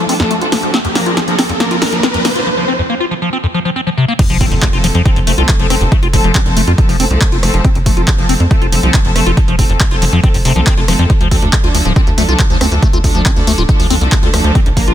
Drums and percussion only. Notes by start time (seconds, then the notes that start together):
0.09 open hi-hat
0.20 snare, closed hi-hat
0.31 closed hi-hat
0.41 closed hi-hat
0.52 snare, open hi-hat
0.63 closed hi-hat
0.74 snare, closed hi-hat
0.85 closed hi-hat
0.95 snare, open hi-hat
1.06 closed hi-hat
1.17 snare, closed hi-hat
1.28 closed hi-hat
1.39 snare, open hi-hat
1.49 closed hi-hat
1.60 snare, closed hi-hat
1.71 closed hi-hat
1.82 snare, open hi-hat
1.93 closed hi-hat
2.03 snare, closed hi-hat
2.14 closed hi-hat
2.25 snare, open hi-hat
2.36 closed hi-hat
4.19 kick, closed hi-hat, crash
4.30 closed hi-hat
4.41 kick, open hi-hat
4.52 closed hi-hat
4.62 kick, clap, closed hi-hat
4.73 closed hi-hat
4.84 open hi-hat
4.95 closed hi-hat
5.06 kick, closed hi-hat
5.16 closed hi-hat
5.27 open hi-hat
5.38 closed hi-hat
5.49 kick, clap, closed hi-hat
5.60 closed hi-hat
5.70 cross-stick, open hi-hat
5.81 closed hi-hat
5.92 kick, closed hi-hat
6.03 closed hi-hat
6.13 kick, open hi-hat
6.24 closed hi-hat
6.35 kick, clap, closed hi-hat
6.46 closed hi-hat
6.57 open hi-hat
6.67 closed hi-hat
6.78 kick, closed hi-hat
6.89 open hi-hat
7.00 open hi-hat
7.11 closed hi-hat
7.21 kick, clap, closed hi-hat
7.32 closed hi-hat
7.43 cross-stick, open hi-hat
7.54 closed hi-hat
7.65 kick, closed hi-hat
7.75 closed hi-hat
7.86 kick, open hi-hat
7.97 closed hi-hat
8.08 kick, clap, closed hi-hat
8.19 closed hi-hat
8.29 open hi-hat
8.40 closed hi-hat
8.51 kick, closed hi-hat
8.62 closed hi-hat
8.72 open hi-hat
8.83 closed hi-hat
8.94 kick, clap, closed hi-hat
9.05 closed hi-hat
9.16 cross-stick, open hi-hat
9.26 closed hi-hat
9.37 kick, closed hi-hat
9.48 closed hi-hat
9.59 kick, open hi-hat
9.70 closed hi-hat
9.80 kick, clap, closed hi-hat
9.91 closed hi-hat
10.02 open hi-hat
10.24 kick, closed hi-hat
10.34 open hi-hat
10.45 open hi-hat
10.56 closed hi-hat
10.67 kick, clap, closed hi-hat
10.78 closed hi-hat
10.88 cross-stick, open hi-hat
10.99 closed hi-hat
11.10 kick, closed hi-hat
11.21 closed hi-hat
11.31 kick, open hi-hat
11.42 closed hi-hat
11.53 kick, clap, closed hi-hat
11.64 closed hi-hat
11.75 open hi-hat
11.85 closed hi-hat
11.96 kick, closed hi-hat
12.07 closed hi-hat
12.18 open hi-hat
12.29 closed hi-hat
12.39 kick, clap, closed hi-hat
12.50 closed hi-hat
12.61 cross-stick, open hi-hat
12.72 closed hi-hat
12.82 kick, closed hi-hat
12.93 closed hi-hat
13.04 kick, open hi-hat
13.15 closed hi-hat
13.26 kick, clap, closed hi-hat
13.37 closed hi-hat
13.47 open hi-hat
13.58 closed hi-hat
13.69 kick, closed hi-hat
13.80 open hi-hat
13.90 open hi-hat
14.01 closed hi-hat
14.12 kick, clap, closed hi-hat
14.23 closed hi-hat
14.34 cross-stick, open hi-hat
14.55 kick, closed hi-hat
14.66 closed hi-hat
14.77 kick, open hi-hat
14.88 closed hi-hat